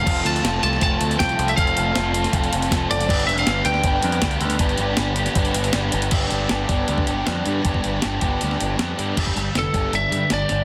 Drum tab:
CC |x---------------|----------------|x---------------|----------------|
HH |-xxxx-x-x-xxxxxx|xxx-x-xxxxxxx-xx|-xxxx-x-x-xxxxxx|xxx-x-xxxxxxx-xx|
SD |----o--o----o---|----o--o----o---|----o--o----o---|----o--o----o---|
BD |o-------o---o---|o-------o---o---|o-------o---o---|o-------o-------|

CC |x---------------|----------------|x---------------|
HH |x-x-x-x-x-x-x-x-|x-x-x-x-x-x-x-x-|x-x-x-x-x-x-x-x-|
SD |----o-------o---|----o----o--o---|----o-------o-o-|
BD |o-----o--o------|oo----o---------|oo----o---------|